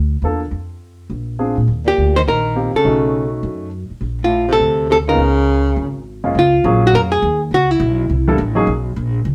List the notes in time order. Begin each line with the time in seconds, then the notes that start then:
Already playing: D2
0.22 E2 A#3 D4 F4 A4
0.51 F2
1.10 A#1
1.39 C4 D4 F4 G#4
1.57 A#2
1.68 D#2
1.86 A#2 G4
1.98 D2
2.16 D#3 C5
2.27 A#1 D#3 A#4
2.55 A#3 C4 F4 G4
2.74 C#3 A4, muted upright bass stroke
2.85 B1 A3 C#4 D#4 F#4
3.43 F#2
3.90 muted upright bass stroke
4.01 A#1
4.22 A2 F4
4.48 C3
4.53 A4
4.60 D2
4.90 C3 A4
5.07 C#3 A#3 B3 D#4 F4 A#4
5.17 C#2
5.76 G#1
6.24 F#2 G#3 A#3 C#4 F4
6.35 C#2 F4
6.64 A#1 F#3 A#3 C#4 F4 G#4
6.87 F#4
6.93 F2 A#4
7.12 G#4
7.22 D#2
7.51 C#2 F#4
7.71 E4
7.80 B1
8.10 C2
8.28 G3 A#3 D4 E4 A4
8.38 A1
8.55 F#3 A#3 C#4 D#4 G#4
8.67 B1
8.96 A#1
9.25 C#2